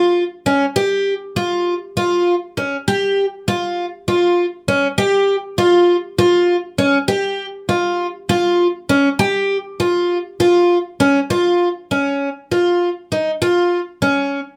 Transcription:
0, 0, Header, 1, 2, 480
1, 0, Start_track
1, 0, Tempo, 603015
1, 606, Time_signature, 7, 3, 24, 8
1, 11594, End_track
2, 0, Start_track
2, 0, Title_t, "Twelve-string acoustic guitar"
2, 0, Program_c, 0, 25
2, 0, Note_on_c, 0, 65, 70
2, 185, Note_off_c, 0, 65, 0
2, 366, Note_on_c, 0, 61, 69
2, 515, Note_off_c, 0, 61, 0
2, 604, Note_on_c, 0, 67, 87
2, 902, Note_off_c, 0, 67, 0
2, 1084, Note_on_c, 0, 65, 68
2, 1382, Note_off_c, 0, 65, 0
2, 1566, Note_on_c, 0, 65, 68
2, 1863, Note_off_c, 0, 65, 0
2, 2047, Note_on_c, 0, 61, 62
2, 2195, Note_off_c, 0, 61, 0
2, 2291, Note_on_c, 0, 67, 82
2, 2586, Note_off_c, 0, 67, 0
2, 2768, Note_on_c, 0, 65, 73
2, 3065, Note_off_c, 0, 65, 0
2, 3246, Note_on_c, 0, 65, 68
2, 3543, Note_off_c, 0, 65, 0
2, 3727, Note_on_c, 0, 61, 73
2, 3875, Note_off_c, 0, 61, 0
2, 3963, Note_on_c, 0, 67, 85
2, 4261, Note_off_c, 0, 67, 0
2, 4442, Note_on_c, 0, 65, 75
2, 4740, Note_off_c, 0, 65, 0
2, 4923, Note_on_c, 0, 65, 79
2, 5221, Note_off_c, 0, 65, 0
2, 5400, Note_on_c, 0, 61, 71
2, 5549, Note_off_c, 0, 61, 0
2, 5636, Note_on_c, 0, 67, 84
2, 5935, Note_off_c, 0, 67, 0
2, 6119, Note_on_c, 0, 65, 67
2, 6418, Note_off_c, 0, 65, 0
2, 6601, Note_on_c, 0, 65, 74
2, 6899, Note_off_c, 0, 65, 0
2, 7079, Note_on_c, 0, 61, 72
2, 7229, Note_off_c, 0, 61, 0
2, 7316, Note_on_c, 0, 67, 85
2, 7616, Note_off_c, 0, 67, 0
2, 7799, Note_on_c, 0, 65, 71
2, 8097, Note_off_c, 0, 65, 0
2, 8278, Note_on_c, 0, 65, 73
2, 8577, Note_off_c, 0, 65, 0
2, 8757, Note_on_c, 0, 61, 73
2, 8907, Note_off_c, 0, 61, 0
2, 8997, Note_on_c, 0, 65, 76
2, 9296, Note_off_c, 0, 65, 0
2, 9481, Note_on_c, 0, 61, 62
2, 9779, Note_off_c, 0, 61, 0
2, 9962, Note_on_c, 0, 65, 66
2, 10260, Note_off_c, 0, 65, 0
2, 10442, Note_on_c, 0, 63, 62
2, 10591, Note_off_c, 0, 63, 0
2, 10680, Note_on_c, 0, 65, 77
2, 10978, Note_off_c, 0, 65, 0
2, 11159, Note_on_c, 0, 61, 65
2, 11458, Note_off_c, 0, 61, 0
2, 11594, End_track
0, 0, End_of_file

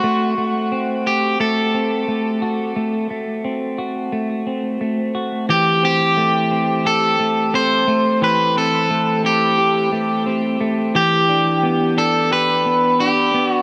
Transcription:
0, 0, Header, 1, 3, 480
1, 0, Start_track
1, 0, Tempo, 681818
1, 26, Time_signature, 4, 2, 24, 8
1, 9589, End_track
2, 0, Start_track
2, 0, Title_t, "Clean electric guitar"
2, 0, Program_c, 0, 27
2, 0, Note_on_c, 0, 66, 75
2, 750, Note_off_c, 0, 66, 0
2, 753, Note_on_c, 0, 67, 77
2, 987, Note_off_c, 0, 67, 0
2, 990, Note_on_c, 0, 69, 79
2, 3360, Note_off_c, 0, 69, 0
2, 3874, Note_on_c, 0, 67, 87
2, 4109, Note_off_c, 0, 67, 0
2, 4118, Note_on_c, 0, 67, 86
2, 4831, Note_off_c, 0, 67, 0
2, 4834, Note_on_c, 0, 69, 99
2, 5314, Note_off_c, 0, 69, 0
2, 5317, Note_on_c, 0, 72, 98
2, 5797, Note_off_c, 0, 72, 0
2, 5800, Note_on_c, 0, 71, 99
2, 6037, Note_off_c, 0, 71, 0
2, 6040, Note_on_c, 0, 69, 98
2, 6485, Note_off_c, 0, 69, 0
2, 6519, Note_on_c, 0, 67, 79
2, 6965, Note_off_c, 0, 67, 0
2, 7717, Note_on_c, 0, 67, 96
2, 8404, Note_off_c, 0, 67, 0
2, 8435, Note_on_c, 0, 69, 93
2, 8674, Note_off_c, 0, 69, 0
2, 8677, Note_on_c, 0, 71, 107
2, 9152, Note_off_c, 0, 71, 0
2, 9155, Note_on_c, 0, 67, 90
2, 9499, Note_off_c, 0, 67, 0
2, 9499, Note_on_c, 0, 66, 90
2, 9589, Note_off_c, 0, 66, 0
2, 9589, End_track
3, 0, Start_track
3, 0, Title_t, "Clean electric guitar"
3, 0, Program_c, 1, 27
3, 0, Note_on_c, 1, 60, 53
3, 26, Note_on_c, 1, 57, 79
3, 262, Note_off_c, 1, 57, 0
3, 265, Note_on_c, 1, 57, 53
3, 503, Note_off_c, 1, 60, 0
3, 506, Note_on_c, 1, 60, 54
3, 983, Note_off_c, 1, 57, 0
3, 985, Note_on_c, 1, 57, 61
3, 1224, Note_off_c, 1, 60, 0
3, 1227, Note_on_c, 1, 60, 53
3, 1462, Note_off_c, 1, 57, 0
3, 1465, Note_on_c, 1, 57, 58
3, 1703, Note_on_c, 1, 66, 59
3, 1942, Note_off_c, 1, 57, 0
3, 1945, Note_on_c, 1, 57, 72
3, 2183, Note_off_c, 1, 57, 0
3, 2186, Note_on_c, 1, 57, 54
3, 2422, Note_off_c, 1, 60, 0
3, 2425, Note_on_c, 1, 60, 55
3, 2656, Note_off_c, 1, 66, 0
3, 2664, Note_on_c, 1, 66, 61
3, 2900, Note_off_c, 1, 57, 0
3, 2903, Note_on_c, 1, 57, 61
3, 3142, Note_off_c, 1, 60, 0
3, 3145, Note_on_c, 1, 60, 54
3, 3383, Note_off_c, 1, 57, 0
3, 3385, Note_on_c, 1, 57, 56
3, 3615, Note_off_c, 1, 66, 0
3, 3624, Note_on_c, 1, 66, 61
3, 3864, Note_on_c, 1, 52, 81
3, 3865, Note_off_c, 1, 66, 0
3, 3868, Note_on_c, 1, 67, 70
3, 4101, Note_off_c, 1, 60, 0
3, 4104, Note_on_c, 1, 60, 61
3, 4342, Note_off_c, 1, 57, 0
3, 4345, Note_on_c, 1, 57, 63
3, 4576, Note_off_c, 1, 60, 0
3, 4584, Note_on_c, 1, 60, 57
3, 4821, Note_off_c, 1, 67, 0
3, 4823, Note_on_c, 1, 67, 70
3, 5056, Note_off_c, 1, 57, 0
3, 5064, Note_on_c, 1, 57, 58
3, 5298, Note_off_c, 1, 60, 0
3, 5306, Note_on_c, 1, 60, 60
3, 5536, Note_off_c, 1, 57, 0
3, 5544, Note_on_c, 1, 57, 65
3, 5781, Note_off_c, 1, 52, 0
3, 5784, Note_on_c, 1, 52, 83
3, 5785, Note_off_c, 1, 67, 0
3, 5788, Note_on_c, 1, 67, 67
3, 6016, Note_off_c, 1, 60, 0
3, 6024, Note_on_c, 1, 60, 60
3, 6259, Note_off_c, 1, 57, 0
3, 6268, Note_on_c, 1, 57, 63
3, 6496, Note_off_c, 1, 60, 0
3, 6504, Note_on_c, 1, 60, 58
3, 6743, Note_off_c, 1, 67, 0
3, 6746, Note_on_c, 1, 67, 65
3, 6977, Note_off_c, 1, 57, 0
3, 6986, Note_on_c, 1, 57, 59
3, 7217, Note_off_c, 1, 60, 0
3, 7226, Note_on_c, 1, 60, 62
3, 7458, Note_off_c, 1, 57, 0
3, 7466, Note_on_c, 1, 57, 63
3, 7704, Note_off_c, 1, 52, 0
3, 7707, Note_on_c, 1, 52, 83
3, 7709, Note_off_c, 1, 67, 0
3, 7712, Note_on_c, 1, 67, 74
3, 7754, Note_off_c, 1, 57, 0
3, 7754, Note_off_c, 1, 60, 0
3, 7948, Note_on_c, 1, 62, 63
3, 8187, Note_on_c, 1, 59, 63
3, 8418, Note_off_c, 1, 62, 0
3, 8427, Note_on_c, 1, 62, 61
3, 8666, Note_off_c, 1, 67, 0
3, 8669, Note_on_c, 1, 67, 68
3, 8902, Note_off_c, 1, 59, 0
3, 8910, Note_on_c, 1, 59, 58
3, 9144, Note_off_c, 1, 62, 0
3, 9152, Note_on_c, 1, 62, 61
3, 9384, Note_off_c, 1, 59, 0
3, 9392, Note_on_c, 1, 59, 64
3, 9589, Note_off_c, 1, 52, 0
3, 9589, Note_off_c, 1, 59, 0
3, 9589, Note_off_c, 1, 62, 0
3, 9589, Note_off_c, 1, 67, 0
3, 9589, End_track
0, 0, End_of_file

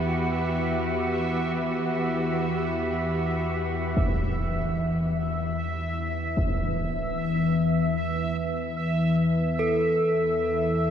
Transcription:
0, 0, Header, 1, 6, 480
1, 0, Start_track
1, 0, Key_signature, 1, "minor"
1, 0, Tempo, 500000
1, 10469, End_track
2, 0, Start_track
2, 0, Title_t, "Synth texture"
2, 0, Program_c, 0, 99
2, 0, Note_on_c, 0, 76, 75
2, 3780, Note_off_c, 0, 76, 0
2, 3792, Note_on_c, 0, 76, 76
2, 10469, Note_off_c, 0, 76, 0
2, 10469, End_track
3, 0, Start_track
3, 0, Title_t, "Bronze metallophone"
3, 0, Program_c, 1, 11
3, 9209, Note_on_c, 1, 69, 73
3, 10469, Note_off_c, 1, 69, 0
3, 10469, End_track
4, 0, Start_track
4, 0, Title_t, "Cello section"
4, 0, Program_c, 2, 48
4, 0, Note_on_c, 2, 52, 59
4, 0, Note_on_c, 2, 59, 61
4, 0, Note_on_c, 2, 66, 66
4, 0, Note_on_c, 2, 67, 59
4, 3810, Note_off_c, 2, 67, 0
4, 3811, Note_off_c, 2, 59, 0
4, 3812, Note_off_c, 2, 52, 0
4, 3819, Note_off_c, 2, 66, 0
4, 10469, End_track
5, 0, Start_track
5, 0, Title_t, "Synth drone"
5, 0, Program_c, 3, 95
5, 0, Note_on_c, 3, 40, 72
5, 0, Note_on_c, 3, 52, 65
5, 3790, Note_off_c, 3, 40, 0
5, 3796, Note_off_c, 3, 52, 0
5, 3802, Note_on_c, 3, 40, 69
5, 3808, Note_on_c, 3, 52, 74
5, 10469, Note_off_c, 3, 40, 0
5, 10469, Note_off_c, 3, 52, 0
5, 10469, End_track
6, 0, Start_track
6, 0, Title_t, "Impact"
6, 0, Program_c, 4, 103
6, 3808, Note_on_c, 4, 60, 66
6, 4042, Note_off_c, 4, 60, 0
6, 6116, Note_on_c, 4, 60, 52
6, 6349, Note_off_c, 4, 60, 0
6, 10469, End_track
0, 0, End_of_file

